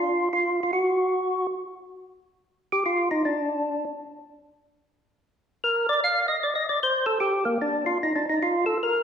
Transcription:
Already playing: F4
0.33 F4
0.63 F4
0.73 F#4
2.72 G4
2.86 F4
3.11 D#4
3.25 D4
5.64 A#4
5.89 D5
6.04 F5
6.28 D#5
6.43 D5
6.55 D#5
6.69 D5
6.83 C5
7.06 A4
7.20 G4
7.45 A#3
7.61 D4
7.86 F4
8.03 D#4
8.16 D4
8.30 D#4
8.43 F4
8.66 A4
8.83 A#4

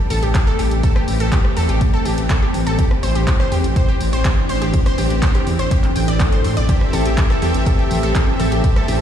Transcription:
Already playing: E3 G3 A3 C4 G4
0.10 A1 A4 A5, open hi-hat
0.23 A1 G4 G5, closed hi-hat
0.35 kick, clap, closed hi-hat
0.47 A4 A5
0.59 A1 G4 G5, open hi-hat
0.71 A1, closed hi-hat
0.83 A4 A5, kick, closed hi-hat
0.96 G4 G5, cross-stick
1.08 A1, open hi-hat
1.20 A1 A4 A5, closed hi-hat
1.32 G4 G5, kick, clap, closed hi-hat
1.45 cross-stick
1.57 E2 A4 A5, open hi-hat
1.69 A1 G4 G5, closed hi-hat
1.81 kick, closed hi-hat
1.94 A4 A5
2.05 A1 G4 G5, open hi-hat
2.18 A1, closed hi-hat
2.30 A4 A5, kick, clap, closed hi-hat
2.42 G4 G5
2.54 A1, open hi-hat
2.67 A1 A4 A5, closed hi-hat
2.79 G3 D4 G4 G5, kick, closed hi-hat
2.91 cross-stick
3.03 A1 C5 C6, open hi-hat
3.15 A1 G4 G5, closed hi-hat
3.27 kick, clap, closed hi-hat
3.40 C5 C6, cross-stick
3.52 E2 G4 G5, open hi-hat
3.64 A1, closed hi-hat
3.76 C5 C6, kick, closed hi-hat
3.89 G4 G5
4.01 A1, open hi-hat
4.13 A1 C5 C6, closed hi-hat
4.25 G4 G5, kick, clap, closed hi-hat
4.49 A1 C5 C6, open hi-hat
4.62 A1 G4 G5, closed hi-hat
4.74 kick, closed hi-hat
4.86 C5 C6, cross-stick, closed hi-hat
4.98 A1 G4 G5, open hi-hat
5.10 A1, closed hi-hat
5.22 C5 C6, kick, clap, closed hi-hat
5.35 G4 G5, cross-stick, closed hi-hat
5.47 E2, open hi-hat
5.59 A1 C5 C6, closed hi-hat
5.71 G4 G5, kick, closed hi-hat, swell
5.84 clap, closed hi-hat
5.96 A1 G5 G6, open hi-hat
6.08 A1 D5 D6, closed hi-hat
6.20 kick, clap, closed hi-hat
6.32 C5 C6, closed hi-hat
6.44 A2 C6, open hi-hat
6.57 A1 D5 D6, closed hi-hat
6.69 A3 C4 G4 A4 E5 G5, kick, closed hi-hat
6.81 cross-stick
6.93 A1 A4 A5, open hi-hat, high conga
7.06 A1 G4 G5, closed hi-hat
7.18 kick, clap, closed hi-hat
7.30 A4 A5, cross-stick
7.42 E2 C4 G4 A4 E5 G5, open hi-hat
7.54 A1, closed hi-hat, high conga
7.66 A4 A5, kick, closed hi-hat
7.79 G4 G5
7.91 A1, open hi-hat, low conga
8.03 A1 A4 A5, closed hi-hat
8.15 G4 G5, kick, clap, closed hi-hat
8.28 high conga
8.39 A1 A4 A5, open hi-hat, low conga
8.52 A1 G4 G5, closed hi-hat
8.64 C4 G4 A4 E5, kick, closed hi-hat
8.76 A4 A5, cross-stick
8.88 A1 G4 G5, open hi-hat, high conga

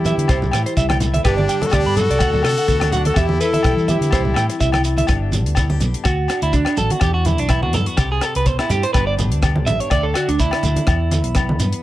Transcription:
Already playing: E2 E3 G3 E4 G4
0.05 B3 E5, closed hi-hat, low conga, shekere
0.17 D3, closed hi-hat
0.28 C2 C3 C5, kick, cross-stick, closed hi-hat, low agogo, shekere
0.42 low conga, shekere
0.51 A2 E3 G5, cross-stick, closed hi-hat, low agogo, shekere
0.66 C5, closed hi-hat
0.77 C2 G3 E5, kick, closed hi-hat, shekere
0.89 G5, cross-stick, high conga, low agogo
1.00 E4, closed hi-hat, low conga, shekere
1.14 E5, closed hi-hat, high conga
1.24 G1 G2 D4 G4 B4, kick, cross-stick, closed hi-hat, low agogo, shekere
1.37 D5, high conga
1.48 D3 G5, closed hi-hat, shekere
1.62 A4, closed hi-hat, high conga
1.66 F#4
1.71 D2 B3 G4 D5, kick, cross-stick, closed hi-hat, low agogo, shekere
1.76 D4
1.85 G2 B5
1.96 G4 A4, closed hi-hat, low conga, shekere
2.01 F#4
2.09 C2 D5, closed hi-hat
2.19 D2 D3 A3 D4 F#4 F#5, kick, cross-stick, closed hi-hat, low agogo, shekere
2.33 A4, low conga, shekere
2.43 C3 A3 A4, cross-stick, closed hi-hat, low agogo, shekere
2.48 F#4
2.58 F#5, closed hi-hat
2.67 D2 B3 A4, kick, closed hi-hat, shekere
2.80 D4, cross-stick, high conga, low agogo
2.92 F#4 F#5, muted steel-string acoustic guitar stroke, closed hi-hat, low conga, shekere
2.97 D4
3.05 F#4 A4, closed hi-hat, high conga
3.14 E2 G4 E5, kick, cross-stick, closed hi-hat, low agogo, shekere
3.19 E4
3.29 high conga
3.40 E3 E4 A4 B4, closed hi-hat, shekere
3.53 E5, closed hi-hat, high conga
3.63 B1 G3 G5, kick, cross-stick, closed hi-hat, low agogo, shekere
3.76 E3, shekere
3.88 B3 E4 G4 E5, closed hi-hat, high conga, low conga, shekere
4.01 D3, closed hi-hat, shekere
4.11 C2 C3 E3 G3 C4 E4 C5, kick, cross-stick, closed hi-hat, low agogo, shekere
4.25 low conga
4.34 A2 E3 G5, cross-stick, closed hi-hat, low agogo, shekere
4.50 muted clean electric guitar stroke, closed hi-hat, shekere
4.60 C2 G3 E5, kick, closed hi-hat, shekere
4.72 G5, cross-stick, high conga, low agogo, shekere
4.84 E4, closed hi-hat, shekere
4.97 E5, closed hi-hat, high conga, shekere
5.07 G1 G2 D3 B3, kick, cross-stick, closed hi-hat, low agogo, shekere
5.11 D4 G4
5.32 D4, closed hi-hat, high conga, low conga, shekere
5.46 D2, closed hi-hat
5.55 E4, kick, cross-stick, closed hi-hat, low agogo, shekere
5.70 G4, high conga
5.80 B1 D4, closed hi-hat, high conga, low conga, shekere
5.94 closed hi-hat
6.04 D2 F#4, muted steel-string acoustic guitar stroke, kick, cross-stick, closed hi-hat, low agogo, shekere
6.28 D4, cross-stick, closed hi-hat, low agogo, shekere
6.42 D2 E4, closed hi-hat
6.53 D4 F#4, kick, closed hi-hat, shekere
6.65 cross-stick, low agogo
6.76 A1 F#4 A4, closed hi-hat, low conga, shekere
6.90 F#4, closed hi-hat, high conga
7.00 E2 G4, kick, cross-stick, closed hi-hat, low agogo, shekere
7.14 F#4
7.25 B3 E4, closed hi-hat, high conga, low conga, shekere
7.38 B1 D4, closed hi-hat
7.48 B3 E4, kick, cross-stick, closed hi-hat, low agogo, shekere
7.63 F#4, high conga
7.73 G2 B3 A4, closed hi-hat, high conga, low conga, shekere
7.86 F#4, closed hi-hat
7.96 C2 C3 G4, kick, cross-stick, closed hi-hat, low agogo, shekere
8.12 G#4
8.21 C4 A4, cross-stick, closed hi-hat, low agogo, shekere
8.35 C2 B4, closed hi-hat
8.44 B2 C5, kick, closed hi-hat, shekere
8.59 E4, cross-stick, low agogo
8.69 G2 A2 G4, closed hi-hat, low conga, shekere
8.83 C5, closed hi-hat
8.93 G1 G2 D3 B3 D4 G4 B4, kick, cross-stick, closed hi-hat, low agogo, shekere
9.07 D5
9.17 D4, closed hi-hat, high conga, low conga, shekere
9.32 D2, closed hi-hat
9.42 G4, kick, cross-stick, closed hi-hat, low agogo, shekere
9.56 high conga
9.66 A1 D4 E5, closed hi-hat, high conga, low conga, shekere
9.80 C#5, closed hi-hat
9.90 D2 D3 D5, kick, cross-stick, closed hi-hat, low agogo, shekere
10.03 A4
10.14 D4 F#4, cross-stick, closed hi-hat, low agogo, shekere
10.28 D2 D4, closed hi-hat
10.39 D4 E4, kick, closed hi-hat, shekere
10.51 cross-stick, low agogo
10.63 D2 D4, closed hi-hat, low conga, shekere
10.76 closed hi-hat, high conga
10.87 E2, kick, cross-stick, closed hi-hat, low agogo, shekere
11.11 B3, closed hi-hat, high conga, shekere
11.24 B1, closed hi-hat
11.35 B3, kick, cross-stick, closed hi-hat, low agogo, shekere
11.49 high conga
11.59 G2 B3, closed hi-hat, low conga, shekere
11.73 closed hi-hat

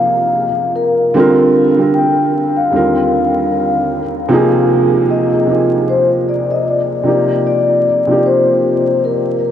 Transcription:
Already playing: C3 F3 A#3 D#4 G#4 F5
0.76 A#4
1.14 D3 G3 C4
1.18 F4 A#4
1.77 D3 G3 C4
1.81 F4 A#4
1.94 G5
2.57 F5
2.71 D#2 D3 G3 C4
2.75 F4 A#4
4.29 C3 F3 A#3
4.33 D#4 G#4
5.11 D#5
5.46 C3 F3 A#3
5.50 D#4 G#4
5.89 C5
6.29 D5
6.51 D#5
6.68 D5
7.04 C3 F3 A#3 D#4
7.09 G4
7.47 D5
8.07 C3 F3 A#3
8.11 D#4 G4
8.26 C5
9.05 A#4

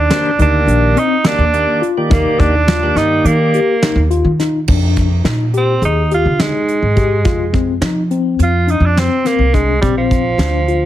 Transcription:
Already playing: D4
0.10 D#3 A#3 D4 G4 C5, snare, closed hi-hat
0.39 D2 D#3 A#3 D4 D#4 G4 A#4, closed hi-hat
0.67 A#1 D4, closed hi-hat
0.96 C4 D#4, closed hi-hat
1.24 D#3 A#3 D4 G4 D5, snare, closed hi-hat
1.38 D#2
1.54 D#3 A#3 G4 D5, closed hi-hat
1.82 F4, closed hi-hat
1.97 D#3 A#3 G4 D5
2.10 D#2 A#3 D#4, kick, closed hi-hat
2.39 D#2 D4 D#4, kick, closed hi-hat
2.68 F4, snare, closed hi-hat
2.83 D#3 A#3 G4 D5
2.96 G2 D#4, snare, closed hi-hat
3.25 D#3 A#3, closed hi-hat
3.54 G4, closed hi-hat
3.83 D#4, snare, closed hi-hat
3.96 D#2
4.10 F4, closed hi-hat
4.25 D#3
4.39 D#4, snare, closed hi-hat
4.68 F2 D4, kick, crash
4.96 kick, closed hi-hat
5.24 A#2 D#4, snare, closed hi-hat
5.54 C4 G4, closed hi-hat
5.82 D#2 D#4 G#4, closed hi-hat
6.11 F4 G4, closed hi-hat
6.25 D3
6.40 G#3 D#4, snare, closed hi-hat
6.68 closed hi-hat
6.82 G#2
6.96 G4, kick, closed hi-hat
7.25 F2 F4, kick, closed hi-hat
7.53 C4, kick, closed hi-hat
7.81 F3 D#4, snare, closed hi-hat
8.11 C4, closed hi-hat
8.39 F2 F4, closed hi-hat
8.67 D4 D#4, closed hi-hat
8.80 F2
8.86 D4
8.96 C4, snare, closed hi-hat
9.25 A#3 C4, snare, closed hi-hat
9.39 C2
9.54 G#3 D4, kick, closed hi-hat
9.81 A#1 G3 C4, kick, closed hi-hat
9.98 F3
10.11 kick, closed hi-hat
10.38 D2 D4, snare, closed hi-hat
10.68 F4, closed hi-hat

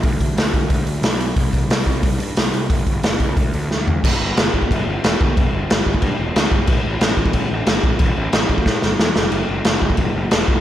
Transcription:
0.03 D2, kick, open hi-hat
0.20 D2, kick, open hi-hat
0.37 D2, snare, open hi-hat
0.54 D2, kick, open hi-hat
0.69 D2, kick, open hi-hat
0.86 D2, open hi-hat
1.02 B1, snare, open hi-hat
1.21 open hi-hat
1.36 C2, kick, open hi-hat
1.53 kick, open hi-hat
1.68 C2, snare, open hi-hat
1.86 C2, kick, open hi-hat
2.03 C2, kick, open hi-hat
2.18 G2, open hi-hat
2.37 C2, snare, open hi-hat
2.53 C2, open hi-hat
2.70 G1, kick, open hi-hat
2.87 G1, kick, open hi-hat
3.03 G1, snare, open hi-hat
3.20 C#2, kick, open hi-hat
3.37 D2, kick, open hi-hat
3.53 D2, open hi-hat
3.71 D2, snare
3.88 floor tom
4.03 G1, kick, crash
4.21 G1
4.37 G1, snare, crash
4.54 G1, kick
4.62 kick
4.71 G1, kick, crash
4.87 G1
5.04 E1, snare, crash
5.21 G1, kick
5.37 G1, kick, crash
5.53 G1
5.70 G1, snare, crash
5.86 G1, kick
5.94 kick
6.02 G2, kick, crash
6.19 E1
6.36 D2, snare, crash
6.51 G1, kick
6.67 A1, kick, crash
6.86 A1
7.01 A1, snare, crash
7.17 A1, kick
7.26 kick
7.33 A1, kick, crash
7.51 A1
7.66 G1, snare, crash
7.83 A1, kick
7.99 A1, kick, crash
8.17 A1
8.33 A1, snare, crash
8.49 A1, kick
8.58 kick
8.66 A2, kick, snare
8.82 G1, snare
8.99 E2, snare
9.16 F#1, snare
9.32 F#1, crash
9.49 F#1
9.65 F#1, snare, crash
9.82 F#1, kick
9.90 kick
9.97 F#1, kick, crash
10.15 F#1
10.31 E1, snare, crash
10.48 F#1, kick

